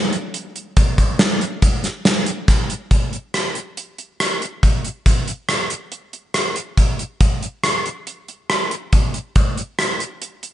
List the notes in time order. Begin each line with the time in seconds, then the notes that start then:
0.13 closed hi-hat
0.34 closed hi-hat
0.56 closed hi-hat
0.77 kick, closed hi-hat
0.98 kick, closed hi-hat
1.19 snare, closed hi-hat
1.41 closed hi-hat
1.62 kick, closed hi-hat
1.84 snare, closed hi-hat
2.05 snare, closed hi-hat
2.26 closed hi-hat
2.48 kick, snare, closed hi-hat
2.70 closed hi-hat
2.91 kick, closed hi-hat
3.13 closed hi-hat
3.34 cross-stick, closed hi-hat
3.55 closed hi-hat
3.77 closed hi-hat
3.98 closed hi-hat
4.20 cross-stick, closed hi-hat
4.42 closed hi-hat
4.63 kick, closed hi-hat
4.85 closed hi-hat
5.06 kick, closed hi-hat
5.28 closed hi-hat
5.49 cross-stick, closed hi-hat
5.70 closed hi-hat
5.92 closed hi-hat
6.13 closed hi-hat
6.34 cross-stick, closed hi-hat
6.56 closed hi-hat
6.77 kick, closed hi-hat
6.99 closed hi-hat
7.21 kick, closed hi-hat
7.43 closed hi-hat
7.64 cross-stick, closed hi-hat
7.86 closed hi-hat
8.07 closed hi-hat
8.28 closed hi-hat
8.50 cross-stick, closed hi-hat
8.71 closed hi-hat
8.93 kick, closed hi-hat
9.14 closed hi-hat
9.36 kick, closed hi-hat
9.58 closed hi-hat
9.79 cross-stick, closed hi-hat
10.00 closed hi-hat
10.22 closed hi-hat
10.43 closed hi-hat